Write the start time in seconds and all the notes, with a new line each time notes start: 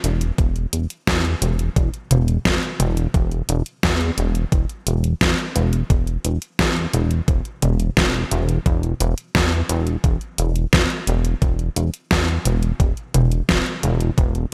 0.04 E1, closed hi-hat
0.21 closed hi-hat
0.38 E1, kick, closed hi-hat
0.56 closed hi-hat
0.73 E1, closed hi-hat
0.90 closed hi-hat
1.07 E2, kick, snare, closed hi-hat
1.25 closed hi-hat
1.42 E1, closed hi-hat, mid tom
1.59 closed hi-hat
1.76 E1, kick, closed hi-hat
1.94 closed hi-hat
2.11 E1, closed hi-hat, mid tom
2.28 closed hi-hat
2.45 E1, kick, snare, closed hi-hat
2.63 closed hi-hat
2.80 E1, closed hi-hat, mid tom
2.97 closed hi-hat
3.14 E1, kick, closed hi-hat
3.32 closed hi-hat
3.49 E1, closed hi-hat
3.66 closed hi-hat
3.83 E2, kick, snare, closed hi-hat
4.01 closed hi-hat
4.18 E1, closed hi-hat
4.35 closed hi-hat
4.52 E1, kick, closed hi-hat
4.69 closed hi-hat
4.87 E1, closed hi-hat
5.04 closed hi-hat
5.21 E1, kick, snare, closed hi-hat
5.38 closed hi-hat
5.56 E1, closed hi-hat
5.73 closed hi-hat
5.90 E1, kick, closed hi-hat
6.07 closed hi-hat
6.25 E1, closed hi-hat
6.42 closed hi-hat
6.59 E2, kick, snare, closed hi-hat
6.76 closed hi-hat
6.93 E1, closed hi-hat, mid tom
7.11 closed hi-hat
7.28 E1, kick, closed hi-hat
7.45 closed hi-hat
7.62 E1, closed hi-hat, mid tom
7.80 closed hi-hat
7.97 E1, kick, snare, closed hi-hat
8.14 closed hi-hat
8.31 E1, closed hi-hat, mid tom
8.49 closed hi-hat
8.66 E1, kick, closed hi-hat
8.83 closed hi-hat
9.00 E1, closed hi-hat
9.18 closed hi-hat
9.35 E2, kick, snare, closed hi-hat
9.52 closed hi-hat
9.69 E1, closed hi-hat
9.87 closed hi-hat
10.04 E1, kick, closed hi-hat
10.21 closed hi-hat
10.38 E1, closed hi-hat
10.56 closed hi-hat
10.73 E1, kick, snare, closed hi-hat
10.90 closed hi-hat
11.07 E1, closed hi-hat
11.25 closed hi-hat
11.42 E1, kick, closed hi-hat
11.59 closed hi-hat
11.76 E1, closed hi-hat
11.94 closed hi-hat
12.11 E2, kick, snare, closed hi-hat
12.28 closed hi-hat
12.45 E1, closed hi-hat, mid tom
12.63 closed hi-hat
12.80 E1, kick, closed hi-hat
12.97 closed hi-hat
13.14 E1, closed hi-hat, mid tom
13.32 closed hi-hat
13.49 E1, kick, snare, closed hi-hat
13.66 closed hi-hat
13.83 E1, closed hi-hat, mid tom
14.01 closed hi-hat
14.18 E1, kick, closed hi-hat
14.35 closed hi-hat